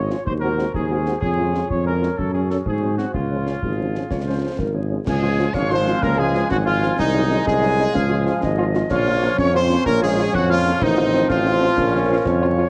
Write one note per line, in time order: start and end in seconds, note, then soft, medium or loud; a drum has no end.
0.00 0.13 G#1 medium
0.00 0.22 F4 medium
0.00 0.24 C#5 medium
0.00 0.26 C#5 medium
0.10 0.16 F3 soft
0.10 0.16 C#4 soft
0.10 0.16 F4 soft
0.10 snare soft
0.25 0.66 D#2 medium
0.25 1.18 F#4 medium
0.25 1.22 C5 soft
0.25 0.33 C5 medium
0.25 concert bass drum medium
0.41 0.48 G#3 soft
0.41 0.48 C4 medium
0.41 0.48 F#4 soft
0.41 0.71 A#4 medium
0.58 0.64 G#3 medium
0.58 0.64 C4 soft
0.58 0.64 F#4 soft
0.58 snare soft
0.74 1.14 D#2 medium
0.74 1.19 G#4 medium
0.74 concert bass drum medium
0.90 0.96 G#3 soft
0.90 0.96 C4 soft
0.90 0.96 F#4 soft
1.06 1.12 G#3 soft
1.06 1.12 C4 soft
1.06 1.12 F#4 soft
1.06 snare soft
1.21 1.62 F2 medium
1.21 2.18 F4 medium
1.21 1.67 G#4 medium
1.21 2.62 C#5 medium
1.21 concert bass drum medium
1.38 1.44 G#3 soft
1.38 1.44 C#4 soft
1.38 1.44 F4 soft
1.54 1.60 G#3 soft
1.54 1.60 C#4 soft
1.54 1.60 F4 soft
1.54 snare soft
1.70 2.10 F2 medium
1.70 1.87 C#5 medium
1.70 concert bass drum medium
1.86 1.92 G#3 soft
1.86 1.92 C#4 soft
1.86 1.92 F4 soft
1.86 2.16 A#4 medium
2.02 2.08 G#3 soft
2.02 2.08 C#4 soft
2.02 2.08 F4 soft
2.02 snare soft
2.17 2.58 F#2 soft
2.17 3.15 F#4 medium
2.17 2.34 A4 medium
2.17 concert bass drum medium
2.34 2.40 F#3 soft
2.34 2.40 C#4 soft
2.34 2.49 G#4 medium
2.49 2.56 F#3 soft
2.49 2.56 C#4 soft
2.49 2.57 A4 medium
2.49 snare soft
2.66 3.06 G#2 soft
2.66 2.96 G#4 medium
2.66 3.14 C5 soft
2.66 concert bass drum medium
2.82 2.88 F#3 soft
2.82 2.88 G#3 soft
2.82 2.88 C4 soft
2.98 3.04 F#3 soft
2.98 3.04 G#3 soft
2.98 3.04 C4 soft
2.98 3.13 F#4 medium
2.98 snare soft
3.13 3.55 C#2 soft
3.13 3.59 F4 soft
3.13 4.86 F4 medium
3.13 3.59 C#5 soft
3.13 concert bass drum medium
3.31 3.37 F3 soft
3.31 3.37 G#3 soft
3.31 3.37 C#4 soft
3.46 3.53 F3 soft
3.46 3.53 G#3 soft
3.46 3.53 C#4 soft
3.46 snare soft
3.62 4.02 G#1 soft
3.62 4.07 G#4 soft
3.62 concert bass drum medium
3.79 3.85 F3 soft
3.79 3.84 G#3 soft
3.79 3.85 C#4 soft
3.94 4.01 F3 soft
3.94 4.00 G#3 soft
3.94 4.00 C#4 soft
3.94 snare soft
4.09 4.50 C#2 soft
4.09 4.17 C#5 medium
4.09 concert bass drum medium
4.09 snare soft
4.27 4.33 F3 soft
4.27 4.33 G#3 soft
4.27 4.33 C#4 soft
4.27 4.57 C5 medium
4.43 4.49 F3 soft
4.43 4.49 G#3 soft
4.43 4.49 C#4 soft
4.58 4.98 G#1 medium
4.58 4.75 A#4 medium
4.58 concert bass drum medium
4.58 snare soft
4.74 4.80 F3 soft
4.74 4.81 G#3 soft
4.74 4.80 C#4 soft
4.74 5.04 G#4 soft
4.90 4.96 F3 soft
4.90 4.96 G#3 soft
4.90 4.96 C#4 soft
5.05 5.46 C#2 medium
5.05 6.95 F3 loud
5.05 5.51 G#3 medium
5.05 6.95 G#3 loud
5.05 5.52 G#4 loud
5.05 5.55 G#5 loud
5.05 concert bass drum medium
5.05 snare medium
5.05 crash medium
5.22 5.28 F3 medium
5.22 5.28 G#3 medium
5.22 5.28 F4 medium
5.38 5.44 F3 medium
5.38 5.44 G#3 medium
5.38 5.45 F4 medium
5.38 snare medium
5.53 5.94 G#1 medium
5.53 5.60 C#4 loud
5.53 5.71 C#5 loud
5.53 6.46 F5 loud
5.53 5.71 C#6 loud
5.53 concert bass drum medium
5.53 snare medium
5.69 5.76 F3 medium
5.69 5.76 G#3 medium
5.69 6.04 C4 medium
5.69 5.76 F4 medium
5.69 6.01 C5 loud
5.69 6.02 C6 loud
5.69 snare medium
5.86 5.92 F3 medium
5.86 5.92 G#3 medium
5.86 5.92 F4 medium
5.86 snare medium
6.02 6.42 C#2 medium
6.02 6.17 A#3 loud
6.02 6.19 A#4 loud
6.02 6.09 A#5 medium
6.02 concert bass drum loud
6.02 snare medium
6.17 6.23 F3 medium
6.17 6.24 G#3 medium
6.17 6.52 G#3 loud
6.17 6.24 F4 medium
6.17 6.51 G#4 loud
6.17 6.52 G#5 loud
6.34 6.40 F3 medium
6.34 6.40 G#3 medium
6.34 6.40 F4 medium
6.34 snare medium
6.50 6.91 G#1 loud
6.50 6.66 F#3 medium
6.50 6.57 F#4 loud
6.50 6.66 F#5 loud
6.50 7.47 G#5 loud
6.50 concert bass drum medium
6.50 snare medium
6.65 6.71 F3 medium
6.65 6.96 F3 medium
6.65 6.72 G#3 medium
6.65 6.96 F4 loud
6.65 6.72 F4 medium
6.65 6.96 F5 loud
6.82 6.88 F3 medium
6.82 6.88 G#3 medium
6.82 6.88 F4 medium
6.82 snare medium
6.98 7.38 C2 medium
6.98 7.43 D#3 medium
6.98 7.94 F#3 medium
6.98 8.86 G#3 loud
6.98 7.44 D#4 loud
6.98 7.47 D#5 medium
6.98 concert bass drum medium
6.98 snare medium
6.98 crash soft
7.13 7.19 F#3 medium
7.13 7.20 G#3 medium
7.13 7.20 D#4 medium
7.29 7.36 F#3 medium
7.29 7.35 G#3 medium
7.29 7.36 D#4 medium
7.29 snare medium
7.46 7.86 C2 medium
7.46 8.71 G#3 loud
7.46 8.71 G#4 loud
7.46 7.91 D#5 loud
7.46 8.74 G#5 loud
7.46 concert bass drum medium
7.46 snare medium
7.62 7.68 F#3 medium
7.62 7.67 G#3 medium
7.62 7.68 D#4 medium
7.62 snare medium
7.78 7.84 F#3 medium
7.78 7.84 G#3 medium
7.78 7.84 D#4 medium
7.78 snare medium
7.93 8.30 C#2 medium
7.93 8.89 F3 medium
7.93 8.38 F5 loud
7.93 concert bass drum medium
7.93 snare medium
8.09 8.15 F3 medium
8.09 8.15 G#3 medium
8.09 8.15 F4 medium
8.26 8.32 F3 medium
8.26 8.32 G#3 medium
8.26 8.32 F4 medium
8.26 snare medium
8.42 8.82 G#1 loud
8.42 8.90 D#5 medium
8.42 concert bass drum medium
8.42 snare medium
8.58 8.64 F3 medium
8.58 8.64 G#3 medium
8.58 8.64 F4 medium
8.74 8.80 F3 medium
8.74 8.80 G#3 medium
8.74 8.80 F4 medium
8.74 snare medium
8.90 9.30 A#1 loud
8.90 9.40 F3 loud
8.90 10.78 F3 medium
8.90 10.78 C#4 loud
8.90 9.35 F4 loud
8.90 9.82 C#5 loud
8.90 9.40 F5 loud
8.90 concert bass drum medium
8.90 snare medium
8.90 crash soft
9.06 9.12 F3 medium
9.06 9.12 A#3 medium
9.06 9.12 F4 medium
9.22 9.28 F3 medium
9.22 9.28 A#3 medium
9.22 9.28 F4 medium
9.22 snare medium
9.38 9.78 F2 loud
9.38 9.54 C#4 loud
9.38 9.55 C#5 loud
9.38 9.54 C#6 loud
9.38 concert bass drum medium
9.38 snare medium
9.54 9.60 F3 medium
9.54 9.60 A#3 medium
9.54 9.89 C4 loud
9.54 9.60 F4 medium
9.54 9.85 C5 loud
9.54 9.84 C6 loud
9.54 snare medium
9.70 9.75 F3 medium
9.70 9.76 A#3 medium
9.70 9.76 F4 medium
9.70 snare medium
9.86 10.26 A#1 loud
9.86 10.03 A#3 loud
9.86 10.01 A#4 loud
9.86 10.78 C#5 loud
9.86 10.04 A#5 loud
9.86 concert bass drum loud
9.86 snare medium
10.01 10.07 F3 medium
10.01 10.35 G#3 loud
10.01 10.07 A#3 medium
10.01 10.07 F4 medium
10.01 10.32 G#4 loud
10.01 10.34 G#5 loud
10.17 10.23 F3 medium
10.17 10.23 A#3 medium
10.17 10.23 F4 medium
10.17 snare medium
10.33 10.73 F2 loud
10.33 10.49 F#3 loud
10.33 10.50 F#4 loud
10.33 10.48 F#5 loud
10.33 concert bass drum medium
10.33 snare medium
10.49 10.79 F3 loud
10.49 10.55 F3 medium
10.49 10.55 A#3 medium
10.49 10.55 F4 medium
10.49 10.80 F4 loud
10.49 10.82 F5 loud
10.65 10.71 F3 medium
10.65 10.71 A#3 medium
10.65 10.71 F4 medium
10.65 snare medium
10.81 11.21 A1 loud
10.81 11.26 D#3 loud
10.81 12.69 F3 loud
10.81 11.78 C4 loud
10.81 11.30 D#4 loud
10.81 11.29 C5 loud
10.81 11.28 D#5 loud
10.81 concert bass drum loud
10.81 snare medium
10.81 crash soft
10.97 11.03 F3 medium
10.97 11.03 C4 medium
10.97 11.03 F4 loud
11.13 11.19 F3 medium
11.13 11.19 C4 medium
11.13 11.19 F4 medium
11.13 snare medium
11.28 11.69 A1 loud
11.28 12.53 F3 loud
11.28 12.53 F4 loud
11.28 11.74 C5 loud
11.28 12.53 F5 loud
11.28 concert bass drum medium
11.28 snare medium
11.45 11.51 F3 medium
11.45 11.51 C4 medium
11.45 11.51 F4 medium
11.45 snare medium
11.61 11.67 F3 medium
11.61 11.67 C4 medium
11.61 11.67 F4 medium
11.61 snare medium
11.77 12.17 A#1 loud
11.77 12.69 C#4 loud
11.77 12.25 A#4 loud
11.77 concert bass drum loud
11.77 snare medium
11.93 11.98 F3 medium
11.93 11.99 C#4 medium
11.93 11.99 F4 medium
12.09 12.15 F3 medium
12.09 12.15 C#4 medium
12.09 12.15 F4 medium
12.25 12.65 F2 loud
12.25 12.69 C#5 loud
12.25 concert bass drum medium
12.25 snare medium
12.41 12.47 F3 medium
12.41 12.47 C#4 medium
12.41 12.47 F4 loud
12.57 12.63 F3 medium
12.57 12.63 C#4 medium
12.57 12.63 F4 medium